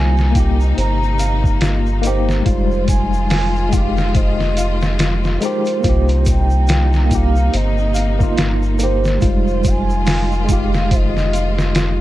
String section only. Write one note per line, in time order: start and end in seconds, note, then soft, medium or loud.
0.00 2.43 C3 medium
0.00 2.43 A#3 medium
0.00 2.43 D#4 medium
2.46 5.80 D#3 medium
2.46 5.81 F3 medium
2.46 5.80 F4 loud
5.85 9.19 C3 medium
5.85 9.19 A#3 medium
5.85 9.19 D#4 medium
9.22 12.01 D#3 medium
9.22 12.01 F3 medium
9.22 12.01 F4 loud